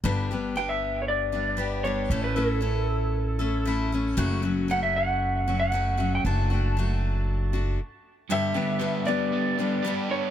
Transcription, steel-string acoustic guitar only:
X:1
M:4/4
L:1/8
Q:1/4=116
K:Glyd
V:1 name="Steel-string acoustic guitar"
[G,,D,G,B,DG] [G,B,DG] [G,B,DG]3 [G,B,DG] [G,B,DG] [G,B,DG] | [A,,E,A,CEA] [A,CEA] [A,CEA]3 [A,CEA] [A,CEA] [A,CEA] | [F,,C,F,A,CF] [F,A,CF] [F,A,CF]3 [F,A,CF] [F,A,CF] [F,A,CF] | [F,A,DF] [A,DF] [F,A,DF]3 [A,DF] z2 |
[G,,D,G,B,DG] [G,B,DG] [G,B,DG] [G,B,DG]2 [G,B,DG] [G,B,DG]2 |]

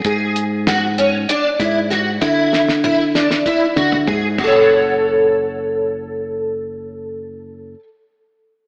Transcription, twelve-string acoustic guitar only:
X:1
M:7/8
L:1/8
Q:1/4=97
K:F#m
V:1 name="Twelve-string acoustic guitar"
G2 F C D E F | E2 E D E F G | [FAcf]6- [FAcf]- | [FAcf]6- [FAcf] |]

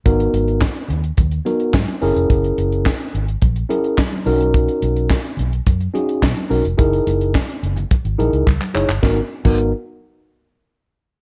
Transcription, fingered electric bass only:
X:1
M:4/4
L:1/16
Q:1/4=107
K:G#m
V:1 name="Fingered electric bass" clef=bass
G,,,2 G,,,3 z D,,2 D,,2 z2 G,, z F,,, ^E,,, | F,,,2 F,,,3 z G,,,2 A,,,2 z4 B,,,2- | B,,,2 B,,,3 z B,,,2 F,,2 z2 B,, z B,,, ^E,,, | F,,,2 F,,,3 z F,,,2 z G,,, A,,, C,, C,, z F,,, =G,,, |
z3 G,,,2 z8 z3 |]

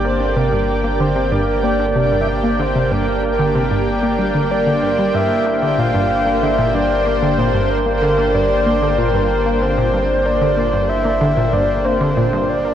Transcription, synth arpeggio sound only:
X:1
M:4/4
L:1/16
Q:1/4=94
K:Gdor
V:1 name="Synth arpeggio sound" clef=bass
B, D, C, G,, z B, D, C, G,, z B, D, C, G,, z B, | D, C, G,, z B, D, C, G,, z B, G, D, G,, D, G,, G, | G,, z B, D, B,, G,, z B, D, B,, G,, z B, D, B,, G,, | z B, D, B,, G,, z B, D, B,, G,, z B, D, B,, G,, z |
B, D, B,, G,, z B, D, B,, G,, z B, D, B,, G,, z B, |]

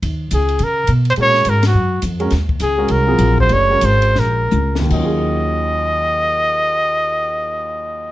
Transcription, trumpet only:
X:1
M:4/4
L:1/8
Q:"Swing" 1/4=190
K:Ebdor
V:1 name="Trumpet"
z2 A2 B2 z c | d2 B G3 z2 | z2 A2 B3 c | d2 c2 B3 z |
e8- | e8 |]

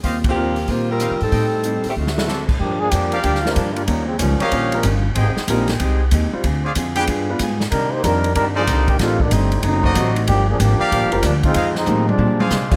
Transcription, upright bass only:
X:1
M:4/4
L:1/8
Q:"Swing" 1/4=188
K:Gphr
V:1 name="Upright bass" clef=bass
E,,4 B,,2- (3B,, C, A,, | =A,,3 z D,,4 | G,,2 F,,2 D,,2 G,,2 | E,,2 _D,, z B,,,2 G,,,2 |
A,,, z B,,,2 C,,2 E,, z | D,,2 F,,2 G,,2 A,,2 | C,2 F,,2 G,,2 C,,2 | =A,,,2 G,,,2 ^F,,,2 A,,,2 |
G,,,2 A,,, z (3B,,, G,,, F,,, D,,2 | F,,2 =A,,2 B,,2 C,2 |]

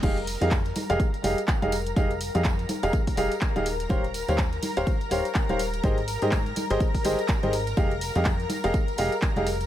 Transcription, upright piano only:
X:1
M:4/4
L:1/16
Q:"Swing 16ths" 1/4=124
K:Fm
V:1 name="Upright piano"
[GAef] z2 [GAef] z3 [GAef] z2 [GAef] z2 [GAef] z2 | [GAef] z2 [GAef] z3 [GAef] z2 [GAef] z2 [GAef] z2 | [Gcdf] z2 [Gcdf] z3 [Gcdf] z2 [Gcdf] z2 [Gcdf] z2 | [GAce] z2 [GAce] z3 [GAce] z2 [GAce] z2 [GAce] z2 |
[GAef] z2 [GAef] z3 [GAef] z2 [GAef] z2 [GAef] z2 |]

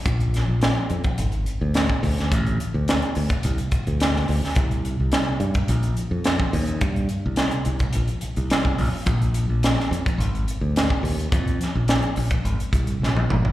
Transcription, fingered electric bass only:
X:1
M:4/4
L:1/16
Q:1/4=107
K:Bbmix
V:1 name="Fingered electric bass" clef=bass
B,,,3 B,,,2 z F,, z A,,,2 z D,,2 z D,,2 | =A,,,2 z D,,2 z D,, z C,, z2 D,,3 D,, z | C,,3 C,,2 z G,, z B,,,2 z F,,2 z E,,2 | G,,2 z C,,2 z C,, z B,,, z2 C,,3 B,,, z |
B,,,3 B,,,2 z F,, z A,,,2 z D,,2 z E,,2 | F,,2 z B,,,2 z B,,, z A,,, z C,,2 B,,,2 A,,,2 |]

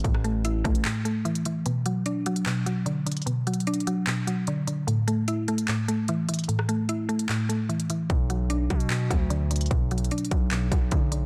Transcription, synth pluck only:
X:1
M:4/4
L:1/8
Q:1/4=149
K:Bm
V:1 name="Synth pluck" clef=bass
[A,,E,A,] A, E A, A,, A, E, E, | B,, F, D F, B,, F, D, D, | B,, F, D F, B,, F, D, D, | A,, A, E A, A,, A, E, E, |
A,, A, E A, A,, A, E, E, | B,, F, D F, B,, F, D, D, | B,, F, D F, B,, F, D, D, |]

